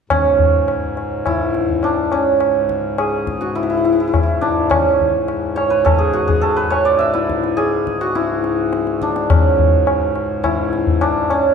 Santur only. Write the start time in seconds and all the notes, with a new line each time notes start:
0.11 C#4
1.26 E4
1.84 D4
2.12 C#4
2.98 G#4
3.41 F#4
3.55 E4
3.63 E4
3.70 E4
3.77 E4
3.85 E4
3.92 E4
4.00 E4
4.08 E4
4.15 E4
4.23 E4
4.41 D4
4.70 C#4
5.56 C#5
5.70 B4
5.85 A4
5.98 G#4
6.13 F#4
6.28 G#4
6.42 A4
6.56 B4
6.70 C#5
6.85 D5
6.99 E5
7.14 E4
7.57 G#4
8.01 F#4
8.15 E4
9.02 D4
9.30 C#4
10.44 E4
11.01 D4
11.31 C#4